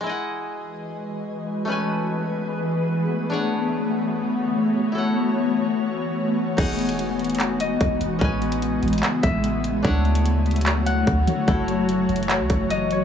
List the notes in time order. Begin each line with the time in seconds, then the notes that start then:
0.01 G#3 E4
0.05 E3 G#3 F#4 B4 D#5
0.09 F#5
1.65 E3 A3 B3 C#4 G#4
1.70 B4 G#5
3.30 D3 D4 F#4 C#5 F#5
4.92 E3 E4 A4
4.98 F#5
6.57 E1 E3 G#3 B3 D#4 F#4 G#4 F#5, kick, closed hi-hat, crash
6.79 closed hi-hat
6.89 closed hi-hat
6.99 closed hi-hat
7.19 closed hi-hat
7.24 closed hi-hat
7.30 closed hi-hat
7.35 closed hi-hat
7.40 clap, closed hi-hat
7.60 D#5, closed hi-hat
7.81 E1, kick, closed hi-hat
8.01 E1, closed hi-hat
8.19 A1 C#3 A3 B3 C#4 E4 B4, kick, closed hi-hat
8.24 G#5
8.42 closed hi-hat
8.52 closed hi-hat
8.62 closed hi-hat
8.83 A1, closed hi-hat
8.88 closed hi-hat
8.93 closed hi-hat
8.98 closed hi-hat
9.03 clap, closed hi-hat
9.23 A1 E5, kick, closed hi-hat
9.44 closed hi-hat
9.64 closed hi-hat
9.83 D2 D3 F#3 D4 F#4 C#5, kick, closed hi-hat
9.87 F#5
10.05 closed hi-hat
10.15 closed hi-hat
10.26 closed hi-hat
10.46 closed hi-hat
10.51 closed hi-hat
10.56 closed hi-hat
10.61 closed hi-hat
10.66 clap, closed hi-hat
10.86 F#5, closed hi-hat
11.07 D2, kick, closed hi-hat
11.27 D3, closed hi-hat
11.48 F#1 E3 F#3 E4 A4, kick, closed hi-hat
11.68 closed hi-hat
11.89 closed hi-hat
12.09 F#1, closed hi-hat
12.16 closed hi-hat
12.23 closed hi-hat
12.29 clap, closed hi-hat
12.40 C#2
12.50 F#1, kick, closed hi-hat
12.70 D#5, closed hi-hat
12.91 C#5, closed hi-hat